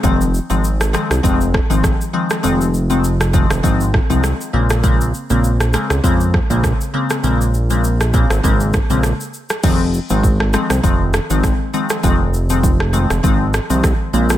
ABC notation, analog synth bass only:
X:1
M:4/4
L:1/16
Q:"Swing 16ths" 1/4=100
K:Fphr
V:1 name="Analog synth bass" clef=bass
F,,,3 A,,,4 C,, F,,,3 A,,,2 z3 | F,,,6- F,,, F,,, A,,,3 C,,2 z B,,,2- | B,,,3 B,,,4 D,, F,,3 B,,,2 z3 | B,,,6- B,,, A,,, A,,,3 B,,,2 z3 |
F,,,3 A,,,4 C,, F,,,3 A,,,2 z3 | F,,,6- F,,, F,,, A,,,3 C,,2 z B,,,2 |]